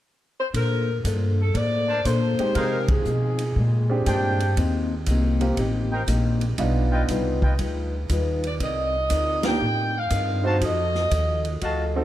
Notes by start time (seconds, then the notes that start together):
0.39 C5
0.53 A#2 A#3 D4 A4 A#4 C5, kick, ride
1.04 G2 A#3 D4 A4 C5, kick, hi-hat pedal, ride
1.40 A4
1.54 A2 A#3 D4 A4 C5 D5, kick, ride
1.88 D4 A#4 C5 A5
2.05 A#2 A#3 D4 A4 C5, kick, hi-hat pedal, ride
2.39 G#3 C4 D#4 G4, muted upright bass stroke, ride
2.55 C3 F3 C4 D#4 G#4 A#4 C5 F5, kick, ride
2.59 G#4
2.88 G#4, kick, ride
3.05 B2 F3 C4 D#4 G#4, hi-hat pedal
3.39 ride
3.56 A#2 G#3 D4 G4, kick
3.90 C4 D4 G4 G#4
4.06 G2 A#2 G#3 D4 G4 C5 G5, kick, hi-hat pedal, ride
4.40 ride
4.57 D#2 D#3 A#3 C4 G4, kick, ride
5.06 C2 D#3 A#3 C4 G4, kick, hi-hat pedal, ride
5.41 A#3 C4 F4 G4, ride
5.57 A1 D#3 A#3 C4 G4, kick, ride
5.92 D#4 A#4 C5 G5
6.08 A#1 D#3 A#3 C4 G4, kick, hi-hat pedal, ride
6.41 ride
6.58 B1 G3 B3 D4 D#4 F4 B4, kick, ride
6.91 F4 B4 D#5 G5
7.08 C2 G3 D#4 F4 B4, kick, hi-hat pedal, ride
7.42 F4 B4 D#5 G5, kick
7.59 D2 G3 D#4 F4 B4, kick, ride
8.09 D#2 G3 D#4 F4 B4, kick, hi-hat pedal, ride
8.44 D5, ride
8.60 C2 C4 D#4 A#4 D5 D#5, kick, ride
9.10 D2 C4 D#4 A#4 D5, kick, hi-hat pedal, ride
9.43 A#3 D4 D#4 G4 G5, snare, ride
9.60 A2 C4 D#4 A#4 D5
9.98 F5
10.10 G2 C4 D#4 A#4 D5, kick, hi-hat pedal, ride
10.44 C4 D#4 F#4 C5 D#5 F5 A5
10.61 F2 F3 F#4 A4 D#5, kick, ride
10.95 snare
11.10 D#2 F3 F#4 A4 D#5, kick, hi-hat pedal, ride
11.45 ride
11.61 D2 F3 F#4 A4 D#5 F5 A5, kick, ride
11.96 C4 D#4 F#4 A4